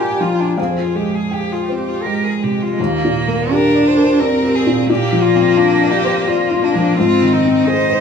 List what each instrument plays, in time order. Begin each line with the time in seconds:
Already playing: felt piano A#2 A#3 G4 D5 F5 G5 G#5 A#5, cello G4
0.03 violin G4
0.21 felt piano F3, cello F4, violin F4
0.40 violin D4
0.57 felt piano F2 F5, violin C4, cello G#4
0.79 violin F4
0.95 felt piano G#3, violin G4
1.15 violin G#4
1.28 cello G#4, felt piano G5
1.33 violin G4
1.52 violin F4
1.66 cello G4, felt piano C5
1.71 violin C4
1.88 violin F4
2.02 felt piano G#3, violin G4, cello A#4
2.25 violin G#4
2.40 felt piano C3, cello G#3
2.44 violin G4
2.62 violin F4
2.78 felt piano D#2, cello A#3
3.05 felt piano A#2
3.28 felt piano A#3
3.51 cello D4, felt piano G4, violin A#4
3.75 felt piano D5
3.88 violin C5
3.97 felt piano A#4
4.20 cello C4, violin A#4, felt piano D5
4.43 felt piano G4
4.55 violin G#4
4.67 felt piano A#2
4.86 felt piano A#2, cello A#3, violin G4
5.12 felt piano F3
5.22 violin F4
5.36 felt piano C4
5.57 violin D4, felt piano F4
5.81 felt piano D5
5.91 violin G4
6.04 felt piano C5
6.27 violin F4, felt piano D5
6.51 felt piano F4
6.61 cello A#3, violin D4
6.75 felt piano F3
6.95 felt piano G#2, cello C4, violin F4
7.21 felt piano D#3
7.33 violin D#4
7.45 felt piano C4
7.64 cello D#4, felt piano G#4, violin C5
7.90 felt piano C5